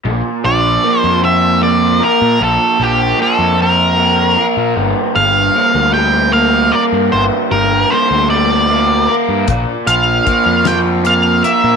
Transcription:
0.05 0.21 A#1 medium
0.05 2.02 A#2 medium
0.44 0.77 A#1 medium
0.44 1.21 F3 medium
0.44 0.99 D5 loud
0.83 1.61 A#3 medium
0.99 1.20 C5 loud
1.04 2.00 F2 medium
1.22 2.78 F3 medium
1.22 1.61 E5 loud
1.61 3.18 A#3 medium
1.61 2.03 D5 medium
2.00 4.37 A#4 medium
2.00 2.43 A#4 medium
2.21 2.38 A#2 medium
2.40 2.57 A#1 medium
2.40 4.37 A#2 medium
2.44 2.83 A4 medium
2.79 3.12 A#1 medium
2.79 3.57 F3 medium
2.83 3.18 G4 medium
3.18 3.97 A#3 medium
3.18 3.61 A4 medium
3.39 4.35 F2 medium
3.58 4.77 F3 medium
3.62 4.45 A#4 medium
3.97 5.54 A#3 medium
4.37 6.73 A#4 medium
4.57 4.73 A#2 medium
4.76 4.93 G1 medium
4.76 6.73 G2 medium
5.16 5.48 G1 medium
5.16 5.92 G3 medium
5.16 5.93 F5 medium
5.55 6.33 A#3 medium
5.75 6.71 D2 medium
5.93 7.50 G3 medium
5.93 6.33 G5 medium
6.33 7.90 A#3 medium
6.33 6.74 F5 medium
6.72 9.08 A#4 medium
6.72 6.83 D5 medium
6.92 7.09 G2 medium
7.12 7.29 G1 medium
7.12 9.08 G2 medium
7.12 7.23 C5 medium
7.51 7.84 G1 medium
7.51 8.28 G3 medium
7.51 7.92 A#4 medium
7.90 8.68 A#3 medium
7.90 8.30 C5 medium
8.11 9.07 D2 medium
8.29 9.47 G3 medium
8.29 9.14 D5 medium
8.69 10.25 A#3 medium
9.08 11.43 A#4 medium
9.29 9.44 G2 medium
9.47 9.64 A#1 medium
9.47 11.43 A#2 medium
9.47 kick loud
9.47 closed hi-hat medium
9.87 10.19 A#1 medium
9.87 10.64 F3 medium
9.87 10.68 F5 medium
9.87 closed hi-hat medium
10.25 11.02 A#3 medium
10.25 kick medium
10.25 closed hi-hat soft
10.46 11.42 F2 medium
10.65 11.76 F3 medium
10.65 10.78 G5 medium
10.65 snare loud
10.65 closed hi-hat medium
11.03 11.76 A#3 medium
11.03 11.42 F5 medium
11.03 closed hi-hat medium
11.43 11.76 A#4 medium
11.43 11.76 E5 medium
11.43 closed hi-hat medium
11.64 11.76 A#2 medium

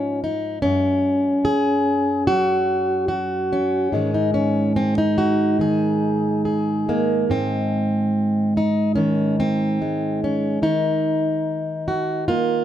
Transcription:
0.00 0.59 G#2 medium
0.00 0.58 F3 medium
0.00 0.23 C#4 medium
0.24 0.62 D#4 medium
0.62 3.88 F#2 medium
0.62 2.27 C#4 medium
1.45 2.27 G#4 loud
2.27 3.88 F#3 medium
2.27 3.07 F#4 loud
3.08 3.92 F#4 medium
3.53 4.14 C#4 medium
3.92 7.24 G#2 medium
3.92 5.58 D#3 soft
3.92 6.88 G#3 soft
3.92 5.17 G#4 soft
4.14 4.34 D#4 medium
4.34 4.76 C#4 medium
4.76 4.97 C4 loud
4.98 6.88 D#4 medium
5.18 5.60 F#4 medium
5.59 8.96 D#3 medium
5.59 6.44 G#4 medium
6.45 7.24 G#4 soft
6.89 9.80 G#3 soft
6.89 7.30 A#3 medium
7.30 10.58 G#2 medium
7.30 8.56 C4 medium
8.57 8.95 D#4 medium
8.95 10.61 D#3 medium
8.95 9.38 C#4 medium
9.40 10.22 C4 medium
9.82 10.63 G#3 soft
10.24 10.62 C#4 medium
10.62 12.64 D#3 medium
10.62 12.64 D#4 medium
11.88 12.28 F#4 medium
12.28 12.64 A#3 medium
12.28 12.64 F4 medium

